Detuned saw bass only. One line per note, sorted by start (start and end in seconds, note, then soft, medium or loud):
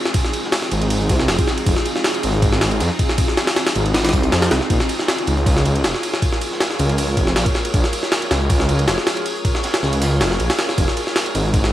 0.72 1.11 G#1 medium
1.10 1.27 C2 loud
1.29 1.38 F1 loud
1.66 1.76 F1 loud
2.24 2.82 G#1 medium
2.81 2.90 F2 medium
3.76 4.12 G#1 medium
4.13 4.31 C2 medium
4.32 4.50 F2 medium
4.51 4.60 C2 loud
4.70 4.79 A#1 loud
5.27 5.86 C#2 medium
5.84 5.93 F1 medium
6.79 7.19 C#2 medium
7.17 7.34 F1 loud
7.36 7.45 A#1 loud
7.74 7.83 A#1 loud
8.31 8.89 C#2 medium
8.88 8.97 F1 medium
9.83 10.23 C#2 medium
10.21 10.38 F1 loud
10.40 10.49 A#1 loud
10.78 10.87 F1 loud
11.35 11.73 G#1 medium